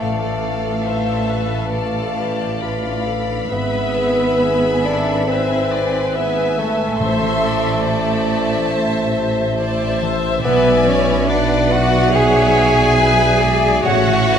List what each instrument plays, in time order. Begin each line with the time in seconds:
Already playing: bassoon A3, cello section A3, viola section A4, harp A4 A5, violin section A4
0.00 double bass section A1, tuba A1, harp A2, french horn section B4 F5, viola section D5, violin section F5
0.23 harp A3
0.45 harp D4
0.66 harp F4
0.86 harp B4, viola section C5 E5, violin section A5
1.09 harp D5
1.30 viola section B4, harp F5
1.54 harp B5
1.73 viola section A4 D5, violin section F5 A5, harp F5
1.97 harp B5
2.17 viola section G4, harp D5
2.43 harp B4
2.62 viola section F4, harp F4, violin section F5 B5
2.85 harp D4
3.07 harp A3, viola section A4
3.30 harp D4
3.51 double bass section G#1, tuba G#1, harp G#2, bassoon B3, cello section B3, viola section B4 E5, violin section B4 E5, french horn section B4 E5
3.74 harp G#3
3.95 harp B3, viola section G#4
4.19 harp E4
4.41 viola section G#4, harp E5, violin section G#5
4.63 harp B4
4.84 cello section D4, bassoon D4, viola section A4, violin section D5, harp E5
5.08 harp E6
5.28 bassoon C4, cello section C4, viola section B4 E5, violin section C5 G#5, harp E5
5.50 harp E6
5.72 harp B4, viola section D5
5.94 harp E5
6.13 cello section B3, bassoon B3, harp E4, violin section B4 E5 G#5, viola section E5
6.37 harp B3
6.58 harp G#3, cello section A3, bassoon A3, violin section A4
6.79 harp B3
6.99 tuba A1, double bass section A1, timpani A2, harp A2, viola section C5 E5, french horn section C5 E5, violin section E5 C6
7.22 harp E3
7.44 harp C4, viola section D5
7.66 harp E4
7.85 viola section C5, violin section E5 A5, harp E5
8.09 harp C5
8.32 harp E5
8.54 harp E6
8.73 viola section C5, harp E5
8.96 harp E6
9.16 viola section C5, harp C5
9.38 harp E5
9.58 harp E4, violin section D5 A5, viola section E5
9.82 harp C4
10.01 harp E3, violin section C5
10.24 harp C4
10.43 double bass section B1, tuba B1, harp B2, cello section B3, bassoon B3, violin section B4 G#5, french horn section D5 E5, viola section D5
10.67 harp G#3
10.87 harp B3, cello section C#4, bassoon C#4, violin section C#5
11.08 harp E4
11.29 cello section D4, bassoon D4, viola section B4 D5, harp D5, violin section D5 F#5
11.51 harp B4
11.71 cello section F#4, bassoon F#4, harp E5, violin section F#5
11.92 harp D6
12.13 cello section G#4, bassoon G#4, viola section C#5, violin section E5 G#5, harp E5
12.35 harp D6
12.56 harp B4
12.79 harp D5
12.98 harp E4, viola section B4, violin section E5
13.21 harp B3
13.40 harp G#3, viola section D5
13.64 harp B3
13.84 double bass section A1, tuba A1, harp A2, cello section F#4, bassoon F#4, viola section C#5, violin section C#5 E5 F#5, french horn section C#5 E5
14.08 harp E3
14.28 harp C#4, viola section B4